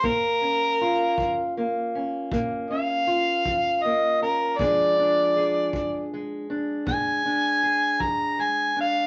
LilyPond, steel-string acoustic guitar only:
\new Staff \with { instrumentName = "Steel-string acoustic guitar" } { \time 12/8 \key bes \dorian \tempo 4. = 53 << { bes8 des'8 f'4 bes8 des'8 bes8 des'8 f'4 bes8 des'8 | <f gis d' gis'>8 d'8 gis'4 gis8 d'8 gis8 d'8 gis'4 gis8 d'8 | } \\ { bes,4 r8 f4 r8 bes,4 r8 f4 r8 | b,4 r8 f4 r8 b,4 r8 f4 r8 | } >> }